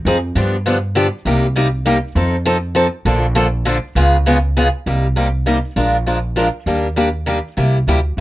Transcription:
0.05 0.31 F2 medium
0.05 0.17 F3 medium
0.05 0.17 C4 medium
0.05 0.17 D#4 loud
0.05 0.17 G#4 loud
0.35 1.07 G2 medium
0.35 0.55 D3 medium
0.35 0.55 F3 medium
0.35 0.55 B3 medium
0.35 0.55 D4 medium
0.35 0.56 G4 medium
0.66 0.76 D3 medium
0.66 0.76 F3 medium
0.66 0.77 B3 medium
0.66 0.77 D4 medium
0.66 0.77 G4 medium
0.95 1.06 D3 medium
0.95 1.06 F3 medium
0.95 1.06 B3 medium
0.95 1.07 D4 loud
0.95 1.07 G4 loud
1.25 1.97 C2 medium
1.25 1.45 C3 medium
1.25 1.45 G3 medium
1.25 1.46 A#3 medium
1.25 1.46 D#4 medium
1.25 1.46 G4 medium
1.56 1.66 C3 medium
1.56 1.67 G3 medium
1.56 1.67 A#3 medium
1.56 1.67 D#4 loud
1.56 1.67 G4 medium
1.86 1.96 C3 medium
1.86 1.96 G3 medium
1.86 1.97 A#3 medium
1.86 1.97 D#4 medium
1.86 1.97 G4 medium
2.15 2.87 F2 medium
2.15 2.35 F3 medium
2.15 2.35 C4 medium
2.15 2.36 D#4 medium
2.15 2.36 A4 medium
2.46 2.56 F3 loud
2.46 2.56 C4 medium
2.46 2.56 D#4 loud
2.46 2.57 A4 loud
2.75 2.86 F3 loud
2.75 2.86 C4 medium
2.75 2.86 D#4 medium
2.75 2.86 A4 loud
3.05 3.77 A#1 loud
3.05 3.25 D3 medium
3.05 3.25 F3 medium
3.05 3.25 A#3 medium
3.05 3.25 D4 medium
3.05 3.25 A4 medium
3.35 3.46 D3 medium
3.35 3.46 F3 medium
3.35 3.46 A#3 medium
3.35 3.46 D4 loud
3.35 3.47 A4 loud
3.65 3.76 D3 medium
3.65 3.76 F3 medium
3.65 3.76 A#3 medium
3.65 3.77 D4 loud
3.65 3.77 A4 loud
3.95 4.67 C#2 loud
3.95 4.15 C#3 medium
3.95 4.16 G#3 medium
3.95 4.16 B3 medium
3.95 4.16 F4 medium
3.95 4.16 G#4 medium
4.26 4.37 C#3 medium
4.26 4.37 G#3 medium
4.26 4.37 B3 loud
4.26 4.37 F4 loud
4.26 4.37 G#4 loud
4.57 4.67 C#3 medium
4.57 4.67 G#3 loud
4.57 4.67 B3 loud
4.57 4.67 F4 loud
4.57 4.67 G#4 loud
4.86 5.58 C2 medium
4.86 5.06 C3 medium
4.86 5.06 G3 medium
4.86 5.06 A#3 medium
4.86 5.06 D#4 medium
4.86 5.06 G4 medium
5.16 5.27 C3 medium
5.16 5.27 G3 medium
5.16 5.27 A#3 medium
5.16 5.27 D#4 medium
5.16 5.27 G4 medium
5.46 5.57 C3 medium
5.46 5.57 G3 medium
5.46 5.57 A#3 medium
5.46 5.57 D#4 medium
5.46 5.57 G4 medium
5.76 6.48 A#1 medium
5.76 5.96 F3 medium
5.76 5.96 G#3 medium
5.76 5.96 D4 medium
5.76 5.96 F4 medium
5.76 5.96 A#4 medium
6.06 6.17 F3 medium
6.06 6.17 G#3 medium
6.06 6.18 D4 medium
6.06 6.17 F4 medium
6.06 6.18 A#4 medium
6.36 6.47 F3 medium
6.36 6.47 G#3 medium
6.36 6.47 D4 medium
6.36 6.47 F4 medium
6.36 6.48 A#4 medium
6.66 7.39 D#2 medium
6.66 6.86 D#3 medium
6.66 6.86 G3 medium
6.66 6.87 A#3 medium
6.66 6.86 D4 medium
6.66 6.87 G4 medium
6.96 7.07 D#3 medium
6.96 7.08 G3 medium
6.96 7.08 A#3 medium
6.96 7.08 D4 medium
6.96 7.08 G4 medium
7.26 7.37 D#3 medium
7.26 7.38 G3 medium
7.26 7.38 A#3 medium
7.26 7.38 D4 medium
7.26 7.38 G4 medium
7.57 7.81 C2 medium
7.57 7.77 C3 medium
7.57 7.77 G3 medium
7.57 7.77 A#3 medium
7.57 7.77 E4 medium
7.57 7.77 G4 medium
7.87 8.13 D2 medium
7.87 7.98 C3 medium
7.87 7.98 G3 medium
7.87 7.99 A#3 medium
7.87 7.99 E4 medium
7.87 7.99 G4 medium
8.17 8.20 E2 medium

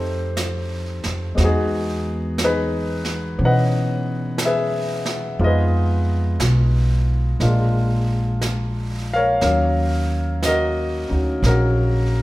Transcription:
0.00 1.02 F2 medium
0.00 1.38 A3 soft
0.00 1.38 C4 soft
0.00 1.37 D#4 soft
0.00 1.38 G4 medium
0.00 1.37 A4 soft
0.00 1.05 C5 medium
0.37 brush sweep soft
0.37 snare soft
0.37 hi-hat pedal soft
1.04 1.35 F2 medium
1.04 snare soft
1.35 3.35 E2 medium
1.35 5.38 G#3 soft
1.35 1.42 B3 soft
1.35 brush sweep soft
1.35 snare soft
1.40 3.37 B3 medium
1.40 2.43 D#4 medium
1.40 5.41 F#4 medium
1.45 2.43 G#4 medium
2.38 brush sweep soft
2.38 snare soft
2.38 hi-hat pedal soft
2.44 4.38 D#4 medium
2.44 4.38 G#4 soft
2.44 3.44 B4 medium
3.05 snare soft
3.38 5.36 B2 medium
3.38 5.41 E3 soft
3.38 5.39 B3 soft
3.38 5.40 C#4 soft
3.38 brush sweep soft
3.45 4.45 B4 medium
3.45 5.39 D#5 medium
3.45 4.38 F#5 medium
4.38 brush sweep soft
4.38 snare soft
4.38 hi-hat pedal soft
4.45 5.39 G#4 medium
4.45 5.39 B4 medium
4.45 5.46 E5 medium
5.05 snare soft
5.39 6.36 F2 medium
5.39 7.39 G#3 soft
5.39 7.41 B3 soft
5.39 7.41 D#4 soft
5.39 7.41 F4 medium
5.39 brush sweep soft
5.44 7.40 G#4 medium
5.44 7.40 B4 medium
5.44 7.39 D#5 medium
6.40 7.37 B1 medium
6.40 brush sweep soft
6.40 snare soft
6.40 hi-hat pedal soft
7.40 9.37 A#1 medium
7.40 9.41 G#3 soft
7.40 9.41 A#3 soft
7.40 9.42 D4 soft
7.40 9.42 F4 soft
7.40 brush sweep soft
7.40 snare soft
8.42 brush sweep soft
8.42 snare soft
8.42 hi-hat pedal soft
9.14 10.46 A#4 medium
9.14 11.09 C#5 medium
9.14 9.42 F5 medium
9.41 11.07 D#2 medium
9.41 12.22 F#3 soft
9.41 12.22 A#3 soft
9.41 11.07 C#4 soft
9.41 12.22 F5 medium
9.41 brush sweep soft
9.41 snare soft
10.43 11.47 D#5 medium
10.43 brush sweep soft
10.43 snare soft
10.43 hi-hat pedal soft
10.47 11.11 F#4 medium
10.47 11.45 A#4 medium
11.09 11.40 D2 medium
11.09 11.47 C#4 soft
11.09 12.22 D#4 soft
11.09 11.47 F#4 soft
11.42 12.22 A#1 medium
11.42 12.22 A#4 medium
11.42 brush sweep soft
11.42 snare soft
11.48 12.22 C#4 soft
11.48 12.22 F#4 medium

